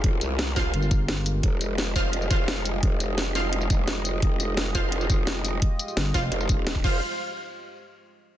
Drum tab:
CC |----------------|----------------|----------------|----------------|
HH |x-x-x-x-x-x-x-o-|x-x-x-x-x-x-x-o-|x-x-x-x-x-x-x-o-|x-x-x-x-x-x-x-o-|
TB |--x-x-x--xx---x-|--x-x-x--xx---x-|--x-x-x--xx---x-|--x-x-x--xx---x-|
SD |----o-o-----o---|----o-------o---|----o-o-----o---|----o-------o---|
BD |o-----o---o-----|o-----o---o-----|o---------o-----|o-----o---o-----|

CC |--------------x-|----------------|
HH |x-x-x-x-x-x-x---|----------------|
TB |--xxx-x--xx-----|----------------|
SD |----o-o-----o---|----------------|
BD |o-----o---o--oo-|----------------|